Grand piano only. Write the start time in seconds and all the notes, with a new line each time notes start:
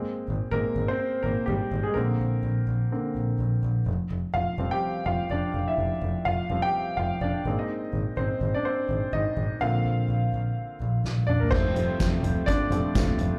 Already playing: G#3 A#3 C4
0.51 G#3 A#3 C4 A#4
0.88 C4 C5
1.23 A#3 A#4
1.46 G3 G4
1.83 G#3 G#4
1.94 D3 A#3 C4 A#4
2.92 D3 A#3 C4
4.34 F4 F5
4.58 F3 G3 C4
4.71 G4 G5
5.06 F4 F5
5.31 D4 D5
5.68 E4 E5
6.25 F4 F5
6.50 F3 G3 C4
6.62 G4 G5
6.97 F4 F5
7.21 D4 D5
7.46 G#3 A#3 C4
7.59 D#4 D#5
8.17 C4 C5
8.54 D4 D5
8.65 C4 C5
9.13 D#4 D#5
9.61 D3 A#3 C4 F4 F5
11.27 D4 D5
11.40 A#3 A#4
11.51 F3 G3 A3 C4 C5
12.46 D4 D5
12.71 F3 G3 A3